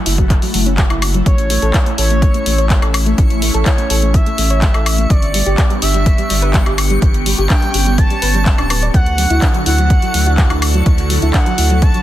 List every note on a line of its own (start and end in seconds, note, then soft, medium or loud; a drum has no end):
0.00 5.06 A3 medium
0.00 1.22 E4 medium
0.00 1.22 F#4 medium
0.06 0.38 F#1 loud
0.06 0.11 E4 medium
0.06 open hi-hat loud
0.18 0.23 F#3 medium
0.18 kick medium
0.18 closed hi-hat soft
0.30 kick loud
0.30 clap soft
0.30 closed hi-hat medium
0.42 0.47 F#3 medium
0.42 open hi-hat medium
0.54 0.86 F#1 medium
0.54 0.57 F#3 medium
0.54 open hi-hat loud
0.66 0.71 C#4 medium
0.66 closed hi-hat soft
0.78 0.83 F#3 medium
0.78 kick loud
0.78 clap loud
0.78 closed hi-hat medium
0.90 1.22 F#1 loud
0.90 0.95 E4 medium
0.90 closed hi-hat soft
0.90 high woodblock medium
1.02 open hi-hat loud
1.02 high woodblock medium
1.14 1.19 F#3 medium
1.14 closed hi-hat soft
1.26 1.58 A1 loud
1.26 5.06 C#4 medium
1.26 5.06 E4 loud
1.26 1.89 C#5 loud
1.26 12.02 C#6 medium
1.26 kick loud
1.26 closed hi-hat medium
1.38 closed hi-hat soft
1.50 1.53 A3 medium
1.50 open hi-hat loud
1.62 1.72 A1 medium
1.62 1.67 A4 loud
1.62 closed hi-hat soft
1.74 1.79 E4 medium
1.74 kick loud
1.74 clap loud
1.74 closed hi-hat medium
1.86 1.91 A3 medium
1.86 closed hi-hat soft
1.98 2.31 A1 loud
1.98 2.03 A4 medium
1.98 2.85 C#5 loud
1.98 open hi-hat loud
2.10 2.15 A3 medium
2.10 closed hi-hat soft
2.22 kick loud
2.22 closed hi-hat medium
2.34 2.39 A3 medium
2.34 closed hi-hat soft
2.46 2.78 A1 medium
2.46 2.49 A3 medium
2.46 open hi-hat loud
2.58 2.65 C#5 loud
2.58 closed hi-hat soft
2.70 2.75 A3 medium
2.70 kick loud
2.70 clap loud
2.70 closed hi-hat medium
2.82 3.14 A1 medium
2.82 2.87 A4 medium
2.82 closed hi-hat soft
2.82 high woodblock medium
2.94 open hi-hat loud
2.94 high woodblock medium
3.06 3.11 A3 medium
3.06 closed hi-hat soft
3.18 3.51 A1 loud
3.18 kick loud
3.18 closed hi-hat medium
3.30 closed hi-hat soft
3.42 3.45 A3 medium
3.42 open hi-hat loud
3.54 3.64 A1 medium
3.54 3.59 A4 loud
3.54 closed hi-hat soft
3.66 3.71 E4 medium
3.66 4.09 C#5 medium
3.66 kick loud
3.66 clap loud
3.66 closed hi-hat medium
3.78 3.83 A3 medium
3.78 closed hi-hat soft
3.90 4.22 A1 loud
3.90 3.95 A4 medium
3.90 open hi-hat loud
4.02 4.07 A3 medium
4.02 closed hi-hat soft
4.14 5.12 E5 loud
4.14 kick loud
4.14 closed hi-hat medium
4.26 4.31 A3 medium
4.26 closed hi-hat soft
4.38 4.71 A1 medium
4.38 4.41 A3 medium
4.38 open hi-hat loud
4.50 4.57 C#5 loud
4.50 closed hi-hat soft
4.62 4.67 A3 medium
4.62 kick loud
4.62 clap loud
4.62 closed hi-hat medium
4.74 5.06 A1 medium
4.74 4.79 A4 medium
4.74 closed hi-hat soft
4.74 high woodblock medium
4.86 open hi-hat loud
4.86 high woodblock medium
4.98 5.03 A3 medium
4.98 closed hi-hat soft
5.10 5.43 G1 loud
5.10 8.90 B3 medium
5.10 7.00 D4 medium
5.10 8.90 G4 loud
5.10 5.73 D5 loud
5.10 kick loud
5.10 closed hi-hat medium
5.22 closed hi-hat soft
5.34 5.37 G3 medium
5.34 open hi-hat loud
5.46 5.56 G1 medium
5.46 5.51 G4 loud
5.46 closed hi-hat soft
5.58 5.63 D4 medium
5.58 kick loud
5.58 clap loud
5.58 closed hi-hat medium
5.70 5.75 G3 medium
5.70 closed hi-hat soft
5.82 6.15 G1 loud
5.82 5.87 G4 medium
5.82 6.69 E5 loud
5.82 open hi-hat loud
5.94 5.99 G3 medium
5.94 closed hi-hat soft
6.06 kick loud
6.06 closed hi-hat medium
6.18 6.23 G3 medium
6.18 closed hi-hat soft
6.30 6.62 G1 medium
6.30 6.33 G3 medium
6.30 open hi-hat loud
6.42 6.49 B4 loud
6.42 closed hi-hat soft
6.54 6.59 G3 medium
6.54 kick loud
6.54 clap loud
6.54 closed hi-hat medium
6.66 6.98 G1 medium
6.66 6.71 G4 medium
6.66 closed hi-hat soft
6.66 high woodblock medium
6.78 open hi-hat loud
6.78 high woodblock medium
6.90 6.95 G3 medium
6.90 closed hi-hat soft
7.02 7.35 G1 loud
7.02 8.92 C#4 medium
7.02 kick loud
7.02 closed hi-hat medium
7.14 closed hi-hat soft
7.26 7.29 G3 medium
7.26 open hi-hat loud
7.38 7.48 G1 medium
7.38 7.43 G4 loud
7.50 7.55 D4 medium
7.50 7.94 G5 medium
7.50 kick loud
7.50 clap loud
7.50 closed hi-hat medium
7.62 7.67 G3 medium
7.62 closed hi-hat soft
7.74 8.06 G1 loud
7.74 7.79 G4 medium
7.74 open hi-hat loud
7.86 7.91 G3 medium
7.86 closed hi-hat soft
7.98 8.85 A5 loud
7.98 kick loud
7.98 closed hi-hat medium
8.10 8.15 G3 medium
8.10 closed hi-hat soft
8.22 8.55 G1 medium
8.22 8.27 B4 loud
8.22 open hi-hat loud
8.34 8.41 G3 loud
8.34 closed hi-hat soft
8.46 8.51 G3 medium
8.46 kick loud
8.46 clap loud
8.46 closed hi-hat medium
8.58 8.90 D1 medium
8.58 8.63 D4 medium
8.58 closed hi-hat soft
8.58 high woodblock medium
8.70 8.75 B4 medium
8.70 open hi-hat loud
8.70 high woodblock medium
8.82 8.87 D5 medium
8.82 closed hi-hat soft
8.94 9.27 D2 loud
8.94 12.02 D3 medium
8.94 12.02 D4 medium
8.94 12.02 E4 medium
8.94 12.02 F#4 medium
8.94 12.02 A4 loud
8.94 9.57 F#5 loud
8.94 kick loud
8.94 closed hi-hat medium
9.06 closed hi-hat soft
9.18 9.21 F#3 medium
9.18 open hi-hat loud
9.30 9.40 D2 medium
9.30 9.35 E4 loud
9.30 closed hi-hat soft
9.42 9.47 D4 medium
9.42 kick loud
9.42 clap loud
9.42 closed hi-hat medium
9.54 9.59 F#3 medium
9.54 closed hi-hat soft
9.66 9.99 D2 loud
9.66 9.71 E4 medium
9.66 10.53 F#5 loud
9.66 open hi-hat loud
9.78 9.83 F#3 medium
9.78 closed hi-hat soft
9.90 kick loud
9.90 closed hi-hat medium
10.02 10.07 F#3 medium
10.02 closed hi-hat soft
10.14 10.47 D2 medium
10.14 10.17 F#3 medium
10.14 open hi-hat loud
10.26 10.33 F#4 loud
10.38 10.43 F#3 medium
10.38 kick loud
10.38 clap loud
10.38 closed hi-hat medium
10.50 10.82 D2 medium
10.50 10.55 E4 medium
10.50 closed hi-hat soft
10.50 high woodblock medium
10.62 open hi-hat loud
10.62 high woodblock medium
10.74 10.79 F#3 medium
10.74 closed hi-hat soft
10.86 11.19 D2 loud
10.86 kick loud
10.86 closed hi-hat medium
10.98 closed hi-hat soft
11.10 11.13 F#3 medium
11.10 open hi-hat loud
11.22 11.32 D2 medium
11.22 11.27 E4 loud
11.22 closed hi-hat soft
11.34 11.39 D4 medium
11.34 11.77 F#5 medium
11.34 kick loud
11.34 clap loud
11.34 closed hi-hat medium
11.46 11.51 F#3 medium
11.46 closed hi-hat soft
11.58 11.91 D2 loud
11.58 11.63 E4 medium
11.58 open hi-hat loud
11.70 11.75 F#3 medium
11.70 closed hi-hat soft
11.82 12.02 A5 loud
11.82 kick loud
11.82 closed hi-hat medium
11.94 11.99 F#3 medium
11.94 closed hi-hat soft